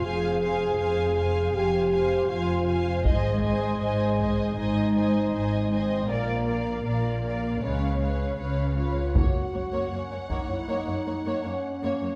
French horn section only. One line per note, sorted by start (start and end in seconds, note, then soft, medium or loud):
0.05 1.55 G#4 medium
1.55 2.30 G4 medium
2.29 2.88 F4 medium
3.05 4.54 G#3 medium
4.56 5.68 D#4 medium
5.71 6.08 C4 medium
6.09 7.61 A#3 medium
7.62 8.39 G#3 soft
8.78 9.13 F4 soft
9.16 9.90 F#4 medium
9.92 10.29 C#4 medium
10.29 10.48 D#4 medium
10.49 10.67 E4 medium
10.67 11.43 D#4 medium
11.44 12.16 C#4 soft